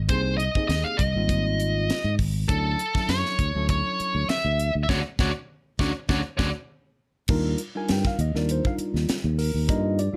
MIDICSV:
0, 0, Header, 1, 6, 480
1, 0, Start_track
1, 0, Tempo, 599401
1, 78, Time_signature, 4, 2, 24, 8
1, 8140, End_track
2, 0, Start_track
2, 0, Title_t, "Lead electric guitar"
2, 0, Program_c, 0, 29
2, 74, Note_on_c, 0, 72, 79
2, 299, Note_off_c, 0, 72, 0
2, 302, Note_on_c, 0, 75, 75
2, 537, Note_off_c, 0, 75, 0
2, 547, Note_on_c, 0, 75, 74
2, 672, Note_on_c, 0, 77, 81
2, 684, Note_off_c, 0, 75, 0
2, 777, Note_on_c, 0, 75, 75
2, 795, Note_off_c, 0, 77, 0
2, 1715, Note_off_c, 0, 75, 0
2, 1989, Note_on_c, 0, 69, 74
2, 2477, Note_on_c, 0, 73, 80
2, 2488, Note_off_c, 0, 69, 0
2, 2925, Note_off_c, 0, 73, 0
2, 2964, Note_on_c, 0, 73, 90
2, 3438, Note_off_c, 0, 73, 0
2, 3442, Note_on_c, 0, 76, 90
2, 3781, Note_off_c, 0, 76, 0
2, 3871, Note_on_c, 0, 76, 67
2, 3916, Note_on_c, 0, 73, 83
2, 3919, Note_off_c, 0, 76, 0
2, 3922, Note_on_c, 0, 74, 68
2, 3924, Note_on_c, 0, 78, 73
2, 3999, Note_off_c, 0, 73, 0
2, 4000, Note_off_c, 0, 78, 0
2, 4001, Note_off_c, 0, 74, 0
2, 4168, Note_on_c, 0, 73, 78
2, 4169, Note_on_c, 0, 78, 73
2, 4171, Note_on_c, 0, 74, 80
2, 4244, Note_off_c, 0, 78, 0
2, 4246, Note_off_c, 0, 73, 0
2, 4247, Note_off_c, 0, 74, 0
2, 4641, Note_on_c, 0, 74, 81
2, 4645, Note_on_c, 0, 73, 83
2, 4648, Note_on_c, 0, 78, 70
2, 4721, Note_off_c, 0, 74, 0
2, 4724, Note_off_c, 0, 73, 0
2, 4724, Note_off_c, 0, 78, 0
2, 4878, Note_on_c, 0, 74, 85
2, 4883, Note_on_c, 0, 73, 90
2, 4884, Note_on_c, 0, 78, 88
2, 4960, Note_off_c, 0, 74, 0
2, 4961, Note_off_c, 0, 78, 0
2, 4962, Note_off_c, 0, 73, 0
2, 5104, Note_on_c, 0, 73, 84
2, 5110, Note_on_c, 0, 74, 78
2, 5113, Note_on_c, 0, 78, 76
2, 5191, Note_off_c, 0, 73, 0
2, 5195, Note_off_c, 0, 74, 0
2, 5195, Note_off_c, 0, 78, 0
2, 8140, End_track
3, 0, Start_track
3, 0, Title_t, "Tine electric piano"
3, 0, Program_c, 1, 4
3, 74, Note_on_c, 1, 67, 63
3, 79, Note_on_c, 1, 58, 59
3, 83, Note_on_c, 1, 60, 58
3, 88, Note_on_c, 1, 63, 54
3, 88, Note_on_c, 1, 68, 65
3, 321, Note_off_c, 1, 67, 0
3, 324, Note_off_c, 1, 58, 0
3, 326, Note_off_c, 1, 60, 0
3, 328, Note_off_c, 1, 63, 0
3, 328, Note_off_c, 1, 68, 0
3, 445, Note_on_c, 1, 58, 63
3, 447, Note_on_c, 1, 67, 64
3, 451, Note_on_c, 1, 60, 62
3, 451, Note_on_c, 1, 63, 55
3, 456, Note_on_c, 1, 68, 73
3, 766, Note_off_c, 1, 58, 0
3, 767, Note_off_c, 1, 67, 0
3, 769, Note_off_c, 1, 60, 0
3, 769, Note_off_c, 1, 63, 0
3, 772, Note_off_c, 1, 68, 0
3, 922, Note_on_c, 1, 55, 63
3, 928, Note_on_c, 1, 58, 57
3, 932, Note_on_c, 1, 60, 58
3, 934, Note_on_c, 1, 63, 61
3, 937, Note_on_c, 1, 65, 73
3, 1572, Note_off_c, 1, 55, 0
3, 1575, Note_off_c, 1, 58, 0
3, 1577, Note_off_c, 1, 60, 0
3, 1578, Note_off_c, 1, 63, 0
3, 1580, Note_off_c, 1, 65, 0
3, 1997, Note_on_c, 1, 54, 61
3, 2001, Note_on_c, 1, 61, 60
3, 2002, Note_on_c, 1, 62, 62
3, 2009, Note_on_c, 1, 64, 60
3, 2012, Note_on_c, 1, 69, 73
3, 2242, Note_off_c, 1, 54, 0
3, 2244, Note_off_c, 1, 61, 0
3, 2245, Note_off_c, 1, 62, 0
3, 2248, Note_off_c, 1, 64, 0
3, 2250, Note_off_c, 1, 69, 0
3, 2356, Note_on_c, 1, 54, 63
3, 2363, Note_on_c, 1, 61, 59
3, 2363, Note_on_c, 1, 62, 57
3, 2368, Note_on_c, 1, 64, 59
3, 2371, Note_on_c, 1, 69, 71
3, 2681, Note_off_c, 1, 54, 0
3, 2685, Note_off_c, 1, 61, 0
3, 2685, Note_off_c, 1, 62, 0
3, 2687, Note_off_c, 1, 64, 0
3, 2689, Note_off_c, 1, 69, 0
3, 2843, Note_on_c, 1, 54, 59
3, 2849, Note_on_c, 1, 61, 59
3, 2850, Note_on_c, 1, 62, 57
3, 2859, Note_on_c, 1, 64, 56
3, 2859, Note_on_c, 1, 69, 67
3, 3493, Note_off_c, 1, 54, 0
3, 3496, Note_off_c, 1, 61, 0
3, 3496, Note_off_c, 1, 62, 0
3, 3501, Note_off_c, 1, 64, 0
3, 3501, Note_off_c, 1, 69, 0
3, 3920, Note_on_c, 1, 62, 81
3, 3921, Note_on_c, 1, 61, 88
3, 3921, Note_on_c, 1, 66, 83
3, 4000, Note_off_c, 1, 62, 0
3, 4001, Note_off_c, 1, 61, 0
3, 4001, Note_off_c, 1, 66, 0
3, 4162, Note_on_c, 1, 62, 80
3, 4167, Note_on_c, 1, 61, 90
3, 4167, Note_on_c, 1, 66, 84
3, 4241, Note_off_c, 1, 62, 0
3, 4244, Note_off_c, 1, 66, 0
3, 4245, Note_off_c, 1, 61, 0
3, 4641, Note_on_c, 1, 61, 89
3, 4641, Note_on_c, 1, 62, 81
3, 4645, Note_on_c, 1, 66, 92
3, 4721, Note_off_c, 1, 61, 0
3, 4721, Note_off_c, 1, 62, 0
3, 4724, Note_off_c, 1, 66, 0
3, 4881, Note_on_c, 1, 61, 80
3, 4881, Note_on_c, 1, 62, 82
3, 4881, Note_on_c, 1, 66, 83
3, 4961, Note_off_c, 1, 61, 0
3, 4961, Note_off_c, 1, 62, 0
3, 4961, Note_off_c, 1, 66, 0
3, 5123, Note_on_c, 1, 66, 78
3, 5124, Note_on_c, 1, 62, 80
3, 5125, Note_on_c, 1, 61, 82
3, 5202, Note_off_c, 1, 66, 0
3, 5203, Note_off_c, 1, 61, 0
3, 5203, Note_off_c, 1, 62, 0
3, 5835, Note_on_c, 1, 55, 75
3, 5838, Note_on_c, 1, 62, 68
3, 5846, Note_on_c, 1, 63, 73
3, 5846, Note_on_c, 1, 65, 71
3, 5848, Note_on_c, 1, 70, 88
3, 6082, Note_off_c, 1, 55, 0
3, 6083, Note_off_c, 1, 62, 0
3, 6087, Note_off_c, 1, 63, 0
3, 6087, Note_off_c, 1, 65, 0
3, 6088, Note_off_c, 1, 70, 0
3, 6206, Note_on_c, 1, 55, 67
3, 6208, Note_on_c, 1, 62, 61
3, 6210, Note_on_c, 1, 63, 58
3, 6213, Note_on_c, 1, 65, 59
3, 6221, Note_on_c, 1, 70, 75
3, 6223, Note_on_c, 1, 80, 69
3, 6324, Note_off_c, 1, 80, 0
3, 6343, Note_on_c, 1, 79, 73
3, 6454, Note_off_c, 1, 79, 0
3, 6461, Note_on_c, 1, 77, 72
3, 6527, Note_off_c, 1, 55, 0
3, 6528, Note_off_c, 1, 62, 0
3, 6529, Note_off_c, 1, 63, 0
3, 6531, Note_off_c, 1, 65, 0
3, 6535, Note_off_c, 1, 70, 0
3, 6563, Note_off_c, 1, 77, 0
3, 6574, Note_on_c, 1, 75, 78
3, 6682, Note_on_c, 1, 55, 62
3, 6688, Note_on_c, 1, 62, 60
3, 6690, Note_off_c, 1, 75, 0
3, 6691, Note_on_c, 1, 65, 59
3, 6692, Note_on_c, 1, 63, 60
3, 6694, Note_on_c, 1, 70, 68
3, 6707, Note_on_c, 1, 74, 68
3, 6806, Note_off_c, 1, 74, 0
3, 6816, Note_on_c, 1, 72, 71
3, 6931, Note_off_c, 1, 72, 0
3, 6942, Note_on_c, 1, 77, 83
3, 7005, Note_off_c, 1, 77, 0
3, 7333, Note_off_c, 1, 55, 0
3, 7336, Note_off_c, 1, 62, 0
3, 7338, Note_off_c, 1, 63, 0
3, 7338, Note_off_c, 1, 65, 0
3, 7339, Note_off_c, 1, 70, 0
3, 7516, Note_on_c, 1, 70, 80
3, 7747, Note_on_c, 1, 55, 62
3, 7750, Note_off_c, 1, 70, 0
3, 7754, Note_on_c, 1, 58, 61
3, 7756, Note_on_c, 1, 63, 60
3, 7756, Note_on_c, 1, 65, 57
3, 7761, Note_on_c, 1, 70, 77
3, 7767, Note_on_c, 1, 75, 85
3, 7996, Note_off_c, 1, 75, 0
3, 7998, Note_off_c, 1, 55, 0
3, 8000, Note_on_c, 1, 74, 76
3, 8002, Note_off_c, 1, 58, 0
3, 8003, Note_off_c, 1, 63, 0
3, 8003, Note_off_c, 1, 65, 0
3, 8005, Note_off_c, 1, 70, 0
3, 8112, Note_on_c, 1, 55, 67
3, 8140, Note_off_c, 1, 55, 0
3, 8140, Note_off_c, 1, 74, 0
3, 8140, End_track
4, 0, Start_track
4, 0, Title_t, "Fingered electric bass"
4, 0, Program_c, 2, 33
4, 74, Note_on_c, 2, 36, 79
4, 384, Note_off_c, 2, 36, 0
4, 552, Note_on_c, 2, 39, 79
4, 661, Note_off_c, 2, 39, 0
4, 795, Note_on_c, 2, 36, 78
4, 903, Note_off_c, 2, 36, 0
4, 913, Note_on_c, 2, 32, 66
4, 1523, Note_off_c, 2, 32, 0
4, 1635, Note_on_c, 2, 44, 73
4, 1734, Note_off_c, 2, 44, 0
4, 1752, Note_on_c, 2, 32, 79
4, 1956, Note_off_c, 2, 32, 0
4, 1994, Note_on_c, 2, 38, 84
4, 2198, Note_off_c, 2, 38, 0
4, 2472, Note_on_c, 2, 42, 82
4, 2581, Note_off_c, 2, 42, 0
4, 2714, Note_on_c, 2, 38, 86
4, 2822, Note_off_c, 2, 38, 0
4, 2844, Note_on_c, 2, 38, 66
4, 3046, Note_off_c, 2, 38, 0
4, 3321, Note_on_c, 2, 38, 70
4, 3417, Note_off_c, 2, 38, 0
4, 3560, Note_on_c, 2, 38, 81
4, 3764, Note_off_c, 2, 38, 0
4, 3805, Note_on_c, 2, 38, 77
4, 3900, Note_off_c, 2, 38, 0
4, 3919, Note_on_c, 2, 38, 80
4, 4013, Note_off_c, 2, 38, 0
4, 4157, Note_on_c, 2, 38, 78
4, 4252, Note_off_c, 2, 38, 0
4, 4638, Note_on_c, 2, 38, 86
4, 4732, Note_off_c, 2, 38, 0
4, 4876, Note_on_c, 2, 38, 81
4, 4971, Note_off_c, 2, 38, 0
4, 5114, Note_on_c, 2, 38, 86
4, 5210, Note_off_c, 2, 38, 0
4, 5838, Note_on_c, 2, 39, 81
4, 6040, Note_off_c, 2, 39, 0
4, 6326, Note_on_c, 2, 43, 84
4, 6430, Note_off_c, 2, 43, 0
4, 6555, Note_on_c, 2, 39, 91
4, 6663, Note_off_c, 2, 39, 0
4, 6683, Note_on_c, 2, 39, 74
4, 6886, Note_off_c, 2, 39, 0
4, 7159, Note_on_c, 2, 39, 72
4, 7257, Note_off_c, 2, 39, 0
4, 7401, Note_on_c, 2, 39, 85
4, 7605, Note_off_c, 2, 39, 0
4, 7643, Note_on_c, 2, 39, 74
4, 7739, Note_off_c, 2, 39, 0
4, 7762, Note_on_c, 2, 43, 86
4, 8070, Note_off_c, 2, 43, 0
4, 8140, End_track
5, 0, Start_track
5, 0, Title_t, "Muted fingered electric bass strokes"
5, 678, Note_on_c, 9, 29, 34
5, 758, Note_off_c, 9, 29, 0
5, 3204, Note_on_c, 9, 29, 31
5, 3284, Note_off_c, 9, 29, 0
5, 3431, Note_on_c, 9, 29, 32
5, 3512, Note_off_c, 9, 29, 0
5, 7032, Note_on_c, 9, 29, 33
5, 7112, Note_off_c, 9, 29, 0
5, 7284, Note_on_c, 9, 29, 36
5, 7364, Note_off_c, 9, 29, 0
5, 8115, Note_on_c, 9, 29, 34
5, 8140, Note_off_c, 9, 29, 0
5, 8140, End_track
6, 0, Start_track
6, 0, Title_t, "Drums"
6, 70, Note_on_c, 9, 42, 74
6, 73, Note_on_c, 9, 36, 99
6, 150, Note_off_c, 9, 42, 0
6, 153, Note_off_c, 9, 36, 0
6, 318, Note_on_c, 9, 42, 53
6, 398, Note_off_c, 9, 42, 0
6, 442, Note_on_c, 9, 36, 66
6, 523, Note_off_c, 9, 36, 0
6, 557, Note_on_c, 9, 42, 73
6, 564, Note_on_c, 9, 38, 87
6, 637, Note_off_c, 9, 42, 0
6, 644, Note_off_c, 9, 38, 0
6, 793, Note_on_c, 9, 36, 72
6, 797, Note_on_c, 9, 42, 55
6, 873, Note_off_c, 9, 36, 0
6, 877, Note_off_c, 9, 42, 0
6, 1034, Note_on_c, 9, 36, 72
6, 1036, Note_on_c, 9, 42, 66
6, 1114, Note_off_c, 9, 36, 0
6, 1116, Note_off_c, 9, 42, 0
6, 1279, Note_on_c, 9, 42, 56
6, 1359, Note_off_c, 9, 42, 0
6, 1519, Note_on_c, 9, 42, 74
6, 1526, Note_on_c, 9, 38, 97
6, 1599, Note_off_c, 9, 42, 0
6, 1606, Note_off_c, 9, 38, 0
6, 1753, Note_on_c, 9, 36, 64
6, 1755, Note_on_c, 9, 46, 77
6, 1833, Note_off_c, 9, 36, 0
6, 1835, Note_off_c, 9, 46, 0
6, 1994, Note_on_c, 9, 36, 101
6, 1998, Note_on_c, 9, 42, 75
6, 2075, Note_off_c, 9, 36, 0
6, 2078, Note_off_c, 9, 42, 0
6, 2236, Note_on_c, 9, 42, 58
6, 2317, Note_off_c, 9, 42, 0
6, 2361, Note_on_c, 9, 36, 73
6, 2372, Note_on_c, 9, 38, 31
6, 2441, Note_off_c, 9, 36, 0
6, 2453, Note_off_c, 9, 38, 0
6, 2473, Note_on_c, 9, 42, 74
6, 2480, Note_on_c, 9, 38, 99
6, 2553, Note_off_c, 9, 42, 0
6, 2560, Note_off_c, 9, 38, 0
6, 2608, Note_on_c, 9, 38, 33
6, 2688, Note_off_c, 9, 38, 0
6, 2713, Note_on_c, 9, 36, 74
6, 2717, Note_on_c, 9, 42, 58
6, 2793, Note_off_c, 9, 36, 0
6, 2797, Note_off_c, 9, 42, 0
6, 2953, Note_on_c, 9, 42, 73
6, 2955, Note_on_c, 9, 36, 73
6, 3033, Note_off_c, 9, 42, 0
6, 3035, Note_off_c, 9, 36, 0
6, 3202, Note_on_c, 9, 42, 50
6, 3282, Note_off_c, 9, 42, 0
6, 3437, Note_on_c, 9, 42, 67
6, 3444, Note_on_c, 9, 38, 94
6, 3517, Note_off_c, 9, 42, 0
6, 3524, Note_off_c, 9, 38, 0
6, 3680, Note_on_c, 9, 42, 54
6, 3760, Note_off_c, 9, 42, 0
6, 3916, Note_on_c, 9, 36, 84
6, 3922, Note_on_c, 9, 38, 84
6, 3996, Note_off_c, 9, 36, 0
6, 4003, Note_off_c, 9, 38, 0
6, 4155, Note_on_c, 9, 36, 81
6, 4157, Note_on_c, 9, 38, 76
6, 4236, Note_off_c, 9, 36, 0
6, 4237, Note_off_c, 9, 38, 0
6, 4638, Note_on_c, 9, 36, 79
6, 4645, Note_on_c, 9, 38, 77
6, 4718, Note_off_c, 9, 36, 0
6, 4725, Note_off_c, 9, 38, 0
6, 4878, Note_on_c, 9, 36, 81
6, 4883, Note_on_c, 9, 38, 83
6, 4958, Note_off_c, 9, 36, 0
6, 4963, Note_off_c, 9, 38, 0
6, 5117, Note_on_c, 9, 36, 83
6, 5117, Note_on_c, 9, 38, 79
6, 5197, Note_off_c, 9, 36, 0
6, 5197, Note_off_c, 9, 38, 0
6, 5828, Note_on_c, 9, 49, 91
6, 5837, Note_on_c, 9, 36, 103
6, 5908, Note_off_c, 9, 49, 0
6, 5917, Note_off_c, 9, 36, 0
6, 6071, Note_on_c, 9, 42, 61
6, 6151, Note_off_c, 9, 42, 0
6, 6314, Note_on_c, 9, 42, 74
6, 6321, Note_on_c, 9, 38, 99
6, 6395, Note_off_c, 9, 42, 0
6, 6401, Note_off_c, 9, 38, 0
6, 6442, Note_on_c, 9, 38, 33
6, 6444, Note_on_c, 9, 36, 71
6, 6522, Note_off_c, 9, 38, 0
6, 6524, Note_off_c, 9, 36, 0
6, 6557, Note_on_c, 9, 42, 57
6, 6638, Note_off_c, 9, 42, 0
6, 6691, Note_on_c, 9, 38, 30
6, 6771, Note_off_c, 9, 38, 0
6, 6798, Note_on_c, 9, 42, 70
6, 6878, Note_off_c, 9, 42, 0
6, 6926, Note_on_c, 9, 36, 66
6, 7006, Note_off_c, 9, 36, 0
6, 7035, Note_on_c, 9, 42, 53
6, 7115, Note_off_c, 9, 42, 0
6, 7174, Note_on_c, 9, 38, 30
6, 7254, Note_off_c, 9, 38, 0
6, 7278, Note_on_c, 9, 42, 69
6, 7284, Note_on_c, 9, 38, 95
6, 7358, Note_off_c, 9, 42, 0
6, 7364, Note_off_c, 9, 38, 0
6, 7518, Note_on_c, 9, 46, 73
6, 7598, Note_off_c, 9, 46, 0
6, 7759, Note_on_c, 9, 36, 97
6, 7763, Note_on_c, 9, 42, 70
6, 7839, Note_off_c, 9, 36, 0
6, 7843, Note_off_c, 9, 42, 0
6, 7998, Note_on_c, 9, 42, 56
6, 8078, Note_off_c, 9, 42, 0
6, 8140, End_track
0, 0, End_of_file